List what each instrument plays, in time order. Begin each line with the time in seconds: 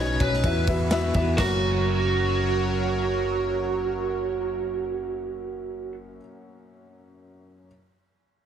Already playing: fingered electric bass B1, upright piano B2 C#4 D#4 F#4 B4 C#5 D#5, analog synth pad B3 C#4 D#4, lead electric guitar C#5
0.20 fingered electric bass B1, upright piano C#4 D#4 F#4 B4 C#5, lead electric guitar B4, kick, ride
0.33 snare
0.43 fingered electric bass E2, analog synth pad E3 E4 F#4 B4, upright piano E3 B3 E4 F#4 B4 E5, kick, ride
0.67 upright piano B3 E4 F#4 B4 E5, kick, ride
0.91 upright piano B3 E4 F#4 B4 E5, snare, ride
1.14 fingered electric bass E2, upright piano B3 E4 F#4 B4 E5, kick, ride
1.37 fingered electric bass F#1, upright piano F#2 A#3 C#4 F#4, analog synth pad F#3 F#4 A#4 C#5, lead electric guitar F#4, kick, snare, crash
1.41 upright piano A#4